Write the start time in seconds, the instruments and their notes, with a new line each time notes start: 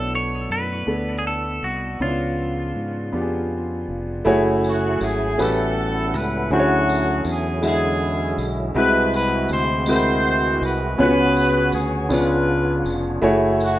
Already playing: fingered electric bass B1, grand piano B2 B3 D4 A4 C#5, string section A3 B3 E4, clean electric guitar A4
0.15 clean electric guitar C#5
0.50 fingered electric bass F#2, clean electric guitar B4
0.87 fingered electric bass D2, grand piano B3 D4 A4 D5
1.19 clean electric guitar G#4
1.27 clean electric guitar A4
1.63 fingered electric bass C2, clean electric guitar F#4
2.00 fingered electric bass C#2, grand piano C#3 B3 D4 E4 C#5, string section C#3 F3, clean electric guitar F4
2.08 grand piano F4
2.75 fingered electric bass G#2
3.12 fingered electric bass F2, grand piano B3 D4 F4 G4
3.21 grand piano G#4
3.88 fingered electric bass F1
4.25 fingered electric bass F#1, tonewheel organ F#3 A3 C#4 E4 G#4, grand piano A3 E4 F#4 G#4 C#5
4.64 horn section F#4, tambourine
5.00 fingered electric bass G#1, horn section G#4, tambourine
5.38 fingered electric bass A1, grand piano A2 A3 C#4 F#4 G4 B4, tonewheel organ G3 B3 C#4 G4 F#5, horn section C#4 E4 A4, tambourine
5.47 tonewheel organ A4
6.14 fingered electric bass C#2, horn section B4, tambourine
6.50 fingered electric bass D2, grand piano D3 C#4 E4 F#4 G#4 C5, tonewheel organ D3 F#3 C#4 E4 G#4, horn section A3 C#4 F#4
6.59 grand piano C#5
6.89 tambourine
7.25 fingered electric bass E2, tambourine
7.30 horn section G#4
7.62 grand piano D3 G#3 E4 F#4 E5, tambourine
7.67 horn section C#4 E4 G#4
8.38 fingered electric bass B1, tambourine
8.74 fingered electric bass C2, grand piano C3 G#3 C4 E4 F#4 B4, tonewheel organ G#3 C4 E4 F#4 G#4, horn section E4 F#4 B4
9.14 horn section B4, tambourine
9.49 fingered electric bass D2, horn section C5, tambourine
9.86 grand piano G#3 C4 E4 F#4 A#4, horn section F#4, tambourine
9.90 horn section E4 C5
9.95 grand piano B5
10.62 fingered electric bass C2, horn section B4, tambourine
10.97 fingered electric bass C#2, grand piano C#3 B3 C#4 F4 G#4 C#5, tonewheel organ B3 C#4 F#4 G#4 C#5, horn section F#4 B4
11.01 horn section G#4
11.05 grand piano F#4
11.36 tambourine
11.72 fingered electric bass D2, horn section G#4, tambourine
12.09 fingered electric bass C#2, grand piano C#3 B3 D4 F4 G#4 C#5, tonewheel organ B3 D4 E4 G#4 C#5, horn section B4, tambourine
12.13 horn section D4 F4, tonewheel organ F4
12.84 fingered electric bass F1, tambourine
13.22 fingered electric bass F#1, grand piano A3 E4 F#4 G#4 C#5, tonewheel organ A3 E4 F#4 C#5
13.60 horn section F#4, tambourine